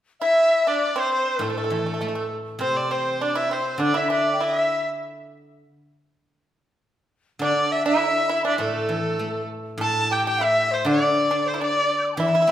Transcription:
0.20 pipa E4, dizi E5, erhu E5
0.67 pipa D4, dizi D5, erhu D5
0.96 pipa C4, dizi C5
1.00 erhu C5
1.14 erhu C5
1.36 guzheng A2, erhu C5
1.41 pipa A3, dizi A4
1.45 erhu A4
1.50 pipa A3
1.58 pipa A3
1.64 pipa A3
1.70 guzheng E3, pipa A3
1.79 pipa A3
1.86 pipa A3
1.94 pipa A3
2.01 pipa A3, guzheng A3
2.08 pipa A3
2.15 pipa A3
2.59 guzheng C3, pipa C4, dizi C5, erhu C5
2.77 erhu D5
2.91 pipa C4, dizi C5, erhu C5
3.20 pipa D4, dizi D5, erhu D5
3.35 pipa E4, erhu E5
3.51 pipa C4, dizi C5, erhu C5
3.78 guzheng D3, pipa D4, dizi D5
3.82 erhu D5
3.94 pipa E4, dizi E5, erhu E5
4.10 pipa D4, erhu D5
4.33 dizi G5
4.41 pipa E4, dizi E5, erhu E5
7.39 guzheng D3, pipa D4, dizi D5, erhu D5
7.72 dizi E5, erhu E5
7.86 pipa E4, erhu E5, dizi E5
8.29 pipa E4, dizi E5
8.45 pipa D4, erhu D5
8.58 guzheng A2, pipa A3, dizi A4, erhu A4
8.89 guzheng E3
9.19 guzheng A3
9.78 guzheng A2, pipa A4, dizi A5
9.82 erhu A5
10.11 pipa G4, dizi G5, erhu G5
10.26 pipa G4, dizi G5, erhu G5
10.40 pipa E4, dizi E5, erhu E5
10.71 dizi C5, erhu C5
10.85 guzheng D3, pipa D4, dizi D5
10.89 erhu D5
11.31 pipa D4
11.43 dizi C5 D5
11.48 erhu C5
11.54 pipa E4
11.60 pipa D4, dizi D5, erhu D5
11.96 dizi G6 A6
12.04 dizi D6 E6
12.09 dizi A5 C6
12.16 guzheng E3, pipa E4, dizi E5 G5
12.23 erhu E5
12.28 pipa E4
12.35 pipa E4
12.42 pipa E4
12.47 guzheng C4

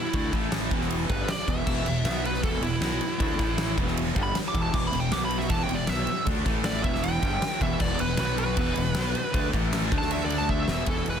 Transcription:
Already playing: lead electric guitar E4
0.13 fingered electric bass D2, distorted electric guitar D3 A3 D4, kick, ride
0.33 fingered electric bass A1, distorted electric guitar A2 E3 A3, kick, ride
0.52 snare, ride
0.71 fingered electric bass E1, distorted electric guitar E2 B2 E3, kick, ride
0.81 snare
0.91 ride
1.09 fingered electric bass G1, distorted electric guitar G2 D3 G3, lead electric guitar B4, kick, ride
1.28 lead electric guitar D5, muted fingered electric bass stroke, muted distorted electric guitar stroke, muted overdriven electric guitar stroke, snare, ride
1.48 fingered electric bass E1, distorted electric guitar E2 B2 E3, lead electric guitar E5, kick, ride
1.67 fingered electric bass E1, distorted electric guitar E2 B2 E3, kick, crash
1.85 fingered electric bass E1, distorted electric guitar E2 B2, ride
2.05 fingered electric bass B1, distorted electric guitar B2 F#3 B3, snare, ride
2.25 lead electric guitar B4, ride
2.34 snare
2.43 fingered electric bass E1, distorted electric guitar E2 B2 E3, lead electric guitar A4, kick, ride
2.62 fingered electric bass E1, distorted electric guitar E2 B2, lead electric guitar E4, ride
2.81 fingered electric bass B1, distorted electric guitar B2 F#3 B3, snare, ride
3.00 muted fingered electric bass stroke, muted distorted electric guitar stroke, muted overdriven electric guitar stroke, ride
3.20 fingered electric bass D2, distorted electric guitar D3 A3 D4, kick, ride
3.38 fingered electric bass A1, distorted electric guitar A2 E3 A3, kick, snare, ride
3.58 snare, ride
3.77 fingered electric bass E1, distorted electric guitar E2 B2 E3, kick, ride
3.87 snare
3.97 ride
4.16 fingered electric bass G1, distorted electric guitar G2 D3 G3, kick, ride
4.23 lead electric guitar B5
4.35 muted distorted electric guitar stroke, muted fingered electric bass stroke, muted overdriven electric guitar stroke, snare, ride
4.48 lead electric guitar D6
4.55 fingered electric bass E1, distorted electric guitar E2 B2 E3, kick, ride
4.62 lead electric guitar A5
4.74 fingered electric bass E1, distorted electric guitar E2 B2 E3, lead electric guitar D6, kick, crash
4.87 lead electric guitar B5
4.93 fingered electric bass E1, distorted electric guitar E2 B2, snare, ride
5.00 lead electric guitar G5
5.12 fingered electric bass B1, distorted electric guitar B2 F#3 B3, lead electric guitar D6, snare, ride
5.25 lead electric guitar B5
5.31 ride
5.38 lead electric guitar E5, snare
5.50 fingered electric bass E1, distorted electric guitar E2 B2 E3, lead electric guitar A5, kick, ride
5.63 lead electric guitar G5
5.69 fingered electric bass E1, distorted electric guitar E2 B2, ride
5.75 lead electric guitar D5
5.87 fingered electric bass B1, distorted electric guitar B2 F#3 B3, lead electric guitar E5, snare, ride
6.07 muted distorted electric guitar stroke, muted overdriven electric guitar stroke, muted fingered electric bass stroke, ride
6.26 fingered electric bass D2, distorted electric guitar D3 A3 D4, kick, ride
6.45 fingered electric bass A1, distorted electric guitar A2 E3 A3, kick, snare, ride
6.64 lead electric guitar D5, snare, ride
6.84 fingered electric bass E1, distorted electric guitar E2 B2 E3, lead electric guitar E5, kick, ride
6.95 snare
7.03 lead electric guitar G5, ride
7.22 fingered electric bass G1, distorted electric guitar G2 D3 G3, kick, ride
7.42 muted overdriven electric guitar stroke, muted distorted electric guitar stroke, snare, ride
7.60 fingered electric bass E1, distorted electric guitar E2 B2 E3, lead electric guitar E5, kick, ride
7.79 fingered electric bass E1, distorted electric guitar E2 B2 E3, lead electric guitar D5, kick, crash
7.99 fingered electric bass E1, distorted electric guitar E2 B2, lead electric guitar B4, ride
8.17 fingered electric bass B1, distorted electric guitar B2 F#3 B3, lead electric guitar B4, snare, ride
8.38 lead electric guitar B4, ride
8.57 fingered electric bass E1, distorted electric guitar E2 B2 E3, kick, ride
8.76 fingered electric bass E1, distorted electric guitar E2 B2, ride
8.95 fingered electric bass B1, distorted electric guitar B2 F#3 B3, snare, ride
9.15 muted distorted electric guitar stroke, muted overdriven electric guitar stroke, muted fingered electric bass stroke, ride
9.32 fingered electric bass D2, distorted electric guitar D3 A3 D4, kick, ride
9.52 fingered electric bass A1, distorted electric guitar A2 E3 A3, kick, ride
9.73 snare, ride
9.90 fingered electric bass D2, distorted electric guitar D3 A3 D4, kick, ride
9.98 lead electric guitar A5, snare
10.11 lead electric guitar E5, ride
10.25 lead electric guitar D5
10.30 ride
10.38 lead electric guitar A5
10.49 lead electric guitar E5, kick
10.63 lead electric guitar E5
10.68 fingered electric bass E1, distorted electric guitar E2 B2 E3, snare
10.86 fingered electric bass E1, distorted electric guitar E2 B2 E3, lead electric guitar A4, kick, ride
11.06 fingered electric bass E1, distorted electric guitar E2 B2 E3, lead electric guitar B4, ride

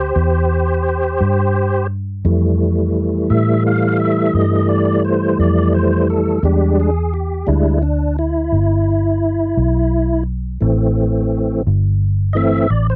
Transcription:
Already playing: fingered electric bass D2, tonewheel organ G4 C5
0.16 fingered electric bass E2
1.21 fingered electric bass G2
2.25 fingered electric bass F2, tonewheel organ E3 G3 A3
3.30 fingered electric bass A2, tonewheel organ E5
3.67 tonewheel organ F5
4.00 tonewheel organ E5
4.34 fingered electric bass G2, tonewheel organ D#5
4.69 tonewheel organ D5
5.05 tonewheel organ C5
5.39 fingered electric bass F2, tonewheel organ D5
5.75 tonewheel organ C5
6.10 tonewheel organ A4
6.43 fingered electric bass E2, tonewheel organ G3 G#3 D4 G4
6.80 tonewheel organ G#4
7.14 tonewheel organ G4
7.47 fingered electric bass D2, tonewheel organ G3 G#3 D4 E4
7.83 tonewheel organ D4
8.19 tonewheel organ E4
8.52 fingered electric bass G1
9.57 fingered electric bass B1
10.61 fingered electric bass A1, tonewheel organ E3 A3 C4
11.67 fingered electric bass G1
12.33 tonewheel organ E3 A3 C4 D#5 E5
12.70 fingered electric bass A1, tonewheel organ D5
12.90 tonewheel organ C5

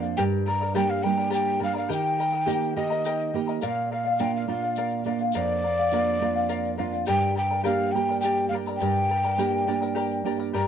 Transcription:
Already playing: nylon-string guitar F2 F3 A#3 D4
0.02 charango D5 F5, shaker
0.17 nylon-string guitar G2, charango G4 A#4 D5 G5 A#5, quena G5, shaker
0.46 charango A#4 D5 G5 A#5, quena A#5
0.61 charango A#4 D5 A#5
0.75 nylon-string guitar G3 A#3 D4, charango G4 A#4 D5 G5 A#5, quena G5, shaker
0.90 quena F5
1.03 nylon-string guitar G3 A#3 D4, charango A#4 D5 G5 A#5, quena G5
1.17 charango A#4 D5 A#5
1.30 charango G4 A#4 D5 G5 A#5, quena G5, shaker
1.48 shaker
1.59 nylon-string guitar G3 A#3 D4, charango A#4 D5 G5 A#5, shaker
1.64 quena F5
1.74 charango A#4 D5 A#5, quena F5, shaker
1.89 nylon-string guitar D#3, charango G4 A#4 D#5 G5 A#5, quena G5, shaker
2.06 shaker
2.19 charango A#4 D#5 G5 A#5, shaker
2.32 charango A#4 D#5 A#5
2.46 nylon-string guitar A#3 D#4 G4, charango G4 A#4 D#5 G5 A#5, shaker
2.62 shaker
2.76 nylon-string guitar A#3 D#4 G4, charango A#4 D#5 G5 A#5, quena D#5
2.90 charango A#4 D#5 A#5
3.05 charango G4 A#4 D#5 G5 A#5, shaker
3.20 shaker
3.34 nylon-string guitar A#3 D#4 G4, charango A#4 D#5 G5 A#5
3.48 charango A#4 D#5 A#5, shaker
3.62 nylon-string guitar A#2, charango A#4 D5 F5, quena F5, shaker
3.91 charango A#4 D5 F5, quena F5
4.05 charango D5 F5
4.19 nylon-string guitar A#3 D4 F4, charango A#4 D5 F5, quena G5, shaker
4.36 quena F5
4.48 nylon-string guitar A#3 D4 F4, charango A#4 D5 F5, quena F5
4.62 charango D5 F5
4.76 charango A#4 D5 F5, shaker
4.90 shaker
5.04 nylon-string guitar A#3 D4 F4, charango A#4 D5 F5, shaker
5.19 charango F5, shaker
5.23 charango D5
5.32 nylon-string guitar F2, charango A#4 D5 F5, quena D5, shaker
5.64 charango A#4 D5 F5
5.79 charango D5 F5
5.91 nylon-string guitar A#3 D4 F4, charango A#4 D5 F5, shaker
6.21 nylon-string guitar A#3 D4 F4, charango A#4 D5 F5
6.36 charango D5 F5
6.49 charango A#4 D5 F5, shaker
6.65 shaker
6.78 nylon-string guitar A#3 D4 F4, charango A#4 D5 F5, shaker
6.93 charango D5 F5, shaker
7.06 nylon-string guitar G2, charango G4 A#4 D5 G5 A#5, quena G5, shaker
7.35 charango A#4 D5 G5 A#5, quena G5
7.51 charango A#4 D5 A#5
7.64 nylon-string guitar A#3 D4 G4, charango G4 A#4 D5 G5 A#5, quena F5, shaker
7.92 nylon-string guitar A#3 D4 G4, charango A#4 D5 G5 A#5, quena G5
8.09 charango A#4 D5 A#5
8.20 charango G4 A#4 A#5, quena G5, shaker
8.24 charango D5 G5
8.36 shaker
8.49 nylon-string guitar A#3 D4 G4, quena F5, shaker
8.53 charango A#4 D5 G5 A#5
8.66 charango A#4 D5 A#5, shaker
8.76 quena G5, shaker
8.81 nylon-string guitar G2, charango G4 A#4 D5 G5 A#5
8.94 shaker
9.09 charango A#4 D5 G5 A#5
9.24 charango A#4 D5 A#5
9.38 nylon-string guitar A#3 D4 G4, charango G4 A#4 D5 G5 A#5, shaker
9.67 nylon-string guitar A#3 D4 G4, charango A#4 D5 G5 A#5, shaker
9.82 charango A#4 D5 A#5, shaker
9.95 charango G4 A#4 D5 G5 A#5
10.11 shaker
10.24 nylon-string guitar A#3 D4 G4, charango A#4 D5 G5 A#5
10.39 charango A#4 D5 A#5
10.53 nylon-string guitar G2, charango G4 A#4 D5 G5 A#5, quena A#5

